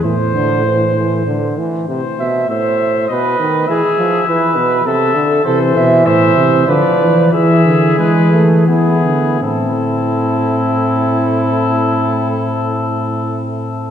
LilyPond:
<<
  \new Staff \with { instrumentName = "Trumpet" } { \time 3/4 \key a \minor \tempo 4 = 97 c''2~ c''8 r8 | c''4 e''4 dis''4 | e''2 e''4 | c''4 e''4 d''4 |
e''4 b'8 r8 gis'4 | a'2.~ | a'2. | }
  \new Staff \with { instrumentName = "Flugelhorn" } { \time 3/4 \key a \minor c''2~ c''8 r8 | r8 e''8 c''4 b'4 | gis'4 b'4 a'4 | a'8 e''8 c''4 b'4 |
gis'2 e'4 | e'2.~ | e'2. | }
  \new Staff \with { instrumentName = "Trombone" } { \clef bass \time 3/4 \key a \minor e8 d8 e8 e8 d8 e8 | c8 b,8 a,4 b,8 dis8 | e8 f8 e8 b,8 c8 d8 | e2 f4 |
e4 gis8 a8 b4 | c'2.~ | c'2. | }
  \new Staff \with { instrumentName = "Bass trombone" } { \clef bass \time 3/4 \key a \minor a,2~ a,8 r8 | r2. | r2. | c8 b,8 a,8 c8 d8 e8 |
e8 d8 e4 e8 d8 | a,2.~ | a,2. | }
>>